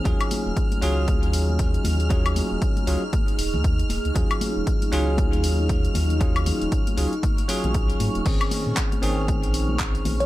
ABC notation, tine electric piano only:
X:1
M:4/4
L:1/16
Q:"Swing 16ths" 1/4=117
K:Ebdor
V:1 name="Tine electric piano"
[G,DFA]6 [G,DFA]8- [G,DFA]2 | [G,DFA]6 [G,DFA] z8 z | [G,DFA]6 [G,DFA]8- [G,DFA]2 | [G,DFA]6 [G,DFA] z3 [G,DFA]6 |
[E,CDA]6 [E,CDA]8- [E,CDA]2 |]